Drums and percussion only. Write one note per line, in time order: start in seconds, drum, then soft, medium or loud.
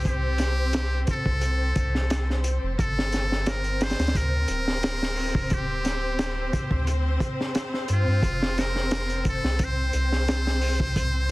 0.05 kick loud
0.05 closed hi-hat medium
0.38 snare soft
0.38 closed hi-hat medium
0.73 snare loud
0.73 closed hi-hat medium
1.07 kick medium
1.07 closed hi-hat medium
1.26 kick medium
1.41 closed hi-hat medium
1.76 kick medium
1.76 closed hi-hat medium
1.95 snare soft
2.10 snare loud
2.10 closed hi-hat loud
2.30 snare soft
2.44 closed hi-hat medium
2.79 kick loud
2.79 closed hi-hat medium
2.99 snare medium
3.12 snare medium
3.12 closed hi-hat medium
3.32 snare soft
3.46 snare loud
3.46 closed hi-hat medium
3.64 closed hi-hat soft
3.81 snare medium
3.81 closed hi-hat medium
3.90 snare medium
3.90 closed hi-hat medium
3.99 snare medium
3.99 closed hi-hat medium
4.07 snare medium
4.07 closed hi-hat medium
4.15 kick loud
4.15 closed hi-hat medium
4.48 closed hi-hat medium
4.68 snare soft
4.83 snare loud
4.83 closed hi-hat medium
5.03 snare medium
5.16 open hi-hat medium
5.35 kick medium
5.50 kick loud
5.50 closed hi-hat medium
5.85 snare soft
5.85 closed hi-hat medium
6.19 snare loud
6.19 closed hi-hat loud
6.53 kick loud
6.53 closed hi-hat medium
6.71 kick medium
6.87 closed hi-hat medium
7.20 kick loud
7.20 closed hi-hat medium
7.41 snare soft
7.55 snare loud
7.55 closed hi-hat loud
7.74 snare soft
7.88 closed hi-hat medium
8.23 kick loud
8.23 closed hi-hat medium
8.42 snare medium
8.58 snare medium
8.58 closed hi-hat medium
8.76 snare soft
8.91 snare loud
8.91 closed hi-hat medium
9.10 closed hi-hat soft
9.25 kick loud
9.25 closed hi-hat medium
9.44 snare medium
9.59 kick loud
9.59 closed hi-hat loud
9.93 closed hi-hat medium
10.12 snare soft
10.28 snare loud
10.28 closed hi-hat medium
10.47 snare medium
10.61 open hi-hat medium
10.80 kick loud
10.96 kick loud
10.96 closed hi-hat medium